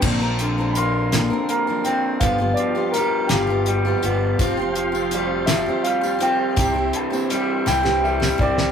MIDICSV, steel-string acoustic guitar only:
0, 0, Header, 1, 2, 480
1, 0, Start_track
1, 0, Tempo, 729040
1, 21, Time_signature, 6, 3, 24, 8
1, 5739, End_track
2, 0, Start_track
2, 0, Title_t, "Steel-string acoustic guitar"
2, 0, Program_c, 0, 25
2, 11, Note_on_c, 0, 46, 83
2, 13, Note_on_c, 0, 50, 86
2, 18, Note_on_c, 0, 53, 80
2, 24, Note_on_c, 0, 60, 86
2, 26, Note_on_c, 0, 62, 89
2, 28, Note_on_c, 0, 70, 96
2, 125, Note_off_c, 0, 70, 0
2, 132, Note_off_c, 0, 62, 0
2, 133, Note_on_c, 0, 70, 55
2, 136, Note_off_c, 0, 46, 0
2, 137, Note_off_c, 0, 50, 0
2, 139, Note_off_c, 0, 53, 0
2, 140, Note_on_c, 0, 62, 46
2, 142, Note_off_c, 0, 60, 0
2, 150, Note_on_c, 0, 60, 48
2, 157, Note_on_c, 0, 53, 41
2, 374, Note_off_c, 0, 70, 0
2, 380, Note_off_c, 0, 62, 0
2, 381, Note_on_c, 0, 70, 49
2, 385, Note_off_c, 0, 60, 0
2, 388, Note_off_c, 0, 53, 0
2, 388, Note_on_c, 0, 62, 47
2, 397, Note_on_c, 0, 60, 45
2, 401, Note_on_c, 0, 53, 39
2, 489, Note_off_c, 0, 53, 0
2, 496, Note_off_c, 0, 60, 0
2, 497, Note_on_c, 0, 53, 54
2, 501, Note_off_c, 0, 70, 0
2, 504, Note_off_c, 0, 62, 0
2, 504, Note_on_c, 0, 60, 54
2, 511, Note_on_c, 0, 62, 62
2, 519, Note_on_c, 0, 70, 58
2, 738, Note_off_c, 0, 53, 0
2, 742, Note_off_c, 0, 60, 0
2, 743, Note_on_c, 0, 46, 78
2, 743, Note_on_c, 0, 50, 68
2, 745, Note_off_c, 0, 62, 0
2, 748, Note_on_c, 0, 53, 68
2, 749, Note_off_c, 0, 70, 0
2, 753, Note_on_c, 0, 60, 69
2, 755, Note_on_c, 0, 62, 71
2, 758, Note_on_c, 0, 70, 80
2, 849, Note_off_c, 0, 70, 0
2, 857, Note_on_c, 0, 70, 49
2, 859, Note_off_c, 0, 62, 0
2, 861, Note_off_c, 0, 46, 0
2, 861, Note_off_c, 0, 50, 0
2, 864, Note_off_c, 0, 53, 0
2, 866, Note_off_c, 0, 60, 0
2, 866, Note_on_c, 0, 62, 47
2, 877, Note_on_c, 0, 60, 45
2, 879, Note_on_c, 0, 53, 45
2, 1093, Note_off_c, 0, 70, 0
2, 1100, Note_off_c, 0, 62, 0
2, 1101, Note_on_c, 0, 70, 51
2, 1108, Note_off_c, 0, 60, 0
2, 1108, Note_on_c, 0, 62, 47
2, 1109, Note_off_c, 0, 53, 0
2, 1116, Note_on_c, 0, 60, 43
2, 1120, Note_on_c, 0, 53, 43
2, 1205, Note_off_c, 0, 53, 0
2, 1213, Note_on_c, 0, 53, 53
2, 1214, Note_off_c, 0, 60, 0
2, 1220, Note_off_c, 0, 70, 0
2, 1222, Note_on_c, 0, 60, 58
2, 1223, Note_off_c, 0, 62, 0
2, 1231, Note_on_c, 0, 62, 64
2, 1238, Note_on_c, 0, 70, 58
2, 1452, Note_off_c, 0, 53, 0
2, 1453, Note_on_c, 0, 43, 75
2, 1455, Note_on_c, 0, 50, 77
2, 1459, Note_off_c, 0, 60, 0
2, 1460, Note_on_c, 0, 53, 84
2, 1462, Note_on_c, 0, 59, 87
2, 1464, Note_off_c, 0, 62, 0
2, 1466, Note_on_c, 0, 65, 93
2, 1468, Note_off_c, 0, 70, 0
2, 1472, Note_on_c, 0, 67, 90
2, 1562, Note_off_c, 0, 67, 0
2, 1569, Note_on_c, 0, 67, 46
2, 1570, Note_off_c, 0, 65, 0
2, 1576, Note_off_c, 0, 43, 0
2, 1577, Note_off_c, 0, 50, 0
2, 1578, Note_on_c, 0, 65, 47
2, 1579, Note_off_c, 0, 53, 0
2, 1579, Note_off_c, 0, 59, 0
2, 1587, Note_on_c, 0, 59, 45
2, 1592, Note_on_c, 0, 53, 44
2, 1802, Note_off_c, 0, 67, 0
2, 1807, Note_off_c, 0, 65, 0
2, 1810, Note_on_c, 0, 67, 53
2, 1815, Note_on_c, 0, 65, 49
2, 1817, Note_off_c, 0, 59, 0
2, 1821, Note_off_c, 0, 53, 0
2, 1825, Note_on_c, 0, 59, 42
2, 1829, Note_on_c, 0, 53, 37
2, 1924, Note_off_c, 0, 53, 0
2, 1932, Note_on_c, 0, 53, 57
2, 1934, Note_off_c, 0, 67, 0
2, 1935, Note_off_c, 0, 59, 0
2, 1936, Note_off_c, 0, 65, 0
2, 1943, Note_on_c, 0, 59, 58
2, 1950, Note_on_c, 0, 65, 59
2, 1956, Note_on_c, 0, 67, 68
2, 2167, Note_on_c, 0, 43, 69
2, 2168, Note_off_c, 0, 53, 0
2, 2172, Note_off_c, 0, 59, 0
2, 2176, Note_off_c, 0, 65, 0
2, 2176, Note_on_c, 0, 50, 70
2, 2176, Note_on_c, 0, 53, 68
2, 2179, Note_off_c, 0, 67, 0
2, 2180, Note_on_c, 0, 59, 75
2, 2184, Note_on_c, 0, 65, 76
2, 2187, Note_on_c, 0, 67, 75
2, 2277, Note_off_c, 0, 67, 0
2, 2285, Note_on_c, 0, 67, 52
2, 2288, Note_off_c, 0, 65, 0
2, 2292, Note_off_c, 0, 43, 0
2, 2295, Note_on_c, 0, 65, 47
2, 2297, Note_off_c, 0, 50, 0
2, 2297, Note_off_c, 0, 53, 0
2, 2299, Note_off_c, 0, 59, 0
2, 2306, Note_on_c, 0, 59, 46
2, 2310, Note_on_c, 0, 53, 43
2, 2526, Note_off_c, 0, 67, 0
2, 2532, Note_off_c, 0, 65, 0
2, 2533, Note_on_c, 0, 67, 54
2, 2540, Note_off_c, 0, 59, 0
2, 2540, Note_on_c, 0, 65, 46
2, 2544, Note_off_c, 0, 53, 0
2, 2547, Note_on_c, 0, 59, 45
2, 2556, Note_on_c, 0, 53, 47
2, 2641, Note_off_c, 0, 53, 0
2, 2649, Note_on_c, 0, 53, 57
2, 2650, Note_off_c, 0, 59, 0
2, 2656, Note_off_c, 0, 67, 0
2, 2658, Note_on_c, 0, 59, 63
2, 2659, Note_off_c, 0, 65, 0
2, 2666, Note_on_c, 0, 65, 63
2, 2671, Note_on_c, 0, 67, 67
2, 2884, Note_off_c, 0, 53, 0
2, 2891, Note_off_c, 0, 65, 0
2, 2891, Note_on_c, 0, 53, 99
2, 2894, Note_off_c, 0, 59, 0
2, 2896, Note_on_c, 0, 60, 100
2, 2899, Note_on_c, 0, 65, 99
2, 2901, Note_off_c, 0, 67, 0
2, 2909, Note_on_c, 0, 67, 93
2, 3002, Note_off_c, 0, 67, 0
2, 3010, Note_on_c, 0, 67, 58
2, 3014, Note_off_c, 0, 53, 0
2, 3016, Note_off_c, 0, 65, 0
2, 3017, Note_off_c, 0, 60, 0
2, 3024, Note_on_c, 0, 65, 53
2, 3039, Note_on_c, 0, 60, 47
2, 3231, Note_off_c, 0, 67, 0
2, 3239, Note_on_c, 0, 67, 62
2, 3248, Note_off_c, 0, 65, 0
2, 3255, Note_off_c, 0, 60, 0
2, 3256, Note_on_c, 0, 65, 58
2, 3263, Note_on_c, 0, 60, 47
2, 3367, Note_on_c, 0, 53, 64
2, 3368, Note_off_c, 0, 67, 0
2, 3370, Note_off_c, 0, 60, 0
2, 3377, Note_off_c, 0, 65, 0
2, 3377, Note_on_c, 0, 60, 67
2, 3383, Note_on_c, 0, 65, 74
2, 3392, Note_on_c, 0, 67, 68
2, 3597, Note_off_c, 0, 53, 0
2, 3601, Note_off_c, 0, 60, 0
2, 3605, Note_on_c, 0, 53, 75
2, 3607, Note_off_c, 0, 65, 0
2, 3609, Note_off_c, 0, 67, 0
2, 3609, Note_on_c, 0, 60, 81
2, 3614, Note_on_c, 0, 65, 82
2, 3617, Note_on_c, 0, 67, 84
2, 3720, Note_off_c, 0, 67, 0
2, 3728, Note_on_c, 0, 67, 50
2, 3731, Note_off_c, 0, 53, 0
2, 3733, Note_off_c, 0, 60, 0
2, 3734, Note_off_c, 0, 65, 0
2, 3742, Note_on_c, 0, 65, 48
2, 3748, Note_on_c, 0, 60, 50
2, 3951, Note_off_c, 0, 67, 0
2, 3959, Note_on_c, 0, 67, 58
2, 3968, Note_off_c, 0, 65, 0
2, 3976, Note_off_c, 0, 60, 0
2, 3976, Note_on_c, 0, 65, 48
2, 3984, Note_on_c, 0, 60, 43
2, 4073, Note_on_c, 0, 53, 56
2, 4075, Note_off_c, 0, 60, 0
2, 4083, Note_off_c, 0, 65, 0
2, 4083, Note_on_c, 0, 60, 60
2, 4088, Note_off_c, 0, 67, 0
2, 4091, Note_on_c, 0, 65, 57
2, 4098, Note_on_c, 0, 67, 70
2, 4320, Note_off_c, 0, 60, 0
2, 4321, Note_off_c, 0, 53, 0
2, 4321, Note_on_c, 0, 48, 81
2, 4324, Note_on_c, 0, 55, 81
2, 4328, Note_on_c, 0, 60, 84
2, 4329, Note_off_c, 0, 67, 0
2, 4330, Note_off_c, 0, 65, 0
2, 4333, Note_on_c, 0, 64, 87
2, 4337, Note_on_c, 0, 67, 86
2, 4428, Note_off_c, 0, 67, 0
2, 4436, Note_on_c, 0, 67, 54
2, 4441, Note_off_c, 0, 64, 0
2, 4449, Note_on_c, 0, 64, 49
2, 4450, Note_off_c, 0, 48, 0
2, 4451, Note_off_c, 0, 55, 0
2, 4453, Note_off_c, 0, 60, 0
2, 4465, Note_on_c, 0, 60, 41
2, 4669, Note_off_c, 0, 67, 0
2, 4677, Note_on_c, 0, 67, 51
2, 4682, Note_off_c, 0, 64, 0
2, 4689, Note_on_c, 0, 64, 49
2, 4692, Note_off_c, 0, 60, 0
2, 4700, Note_on_c, 0, 60, 47
2, 4805, Note_on_c, 0, 55, 54
2, 4808, Note_off_c, 0, 60, 0
2, 4808, Note_off_c, 0, 67, 0
2, 4814, Note_off_c, 0, 64, 0
2, 4816, Note_on_c, 0, 60, 56
2, 4822, Note_on_c, 0, 64, 62
2, 4828, Note_on_c, 0, 67, 68
2, 5036, Note_off_c, 0, 55, 0
2, 5042, Note_off_c, 0, 60, 0
2, 5043, Note_on_c, 0, 48, 72
2, 5043, Note_on_c, 0, 55, 74
2, 5046, Note_off_c, 0, 64, 0
2, 5050, Note_on_c, 0, 60, 78
2, 5051, Note_off_c, 0, 67, 0
2, 5054, Note_on_c, 0, 64, 85
2, 5059, Note_on_c, 0, 67, 93
2, 5149, Note_off_c, 0, 67, 0
2, 5157, Note_on_c, 0, 67, 62
2, 5165, Note_off_c, 0, 64, 0
2, 5171, Note_off_c, 0, 48, 0
2, 5171, Note_off_c, 0, 55, 0
2, 5172, Note_on_c, 0, 64, 50
2, 5173, Note_off_c, 0, 60, 0
2, 5181, Note_on_c, 0, 60, 46
2, 5390, Note_off_c, 0, 67, 0
2, 5397, Note_on_c, 0, 67, 56
2, 5403, Note_off_c, 0, 64, 0
2, 5411, Note_on_c, 0, 64, 49
2, 5416, Note_off_c, 0, 60, 0
2, 5424, Note_on_c, 0, 60, 40
2, 5516, Note_on_c, 0, 55, 67
2, 5519, Note_off_c, 0, 60, 0
2, 5526, Note_off_c, 0, 64, 0
2, 5527, Note_on_c, 0, 60, 58
2, 5529, Note_off_c, 0, 67, 0
2, 5534, Note_on_c, 0, 64, 69
2, 5542, Note_on_c, 0, 67, 73
2, 5739, Note_off_c, 0, 55, 0
2, 5739, Note_off_c, 0, 60, 0
2, 5739, Note_off_c, 0, 64, 0
2, 5739, Note_off_c, 0, 67, 0
2, 5739, End_track
0, 0, End_of_file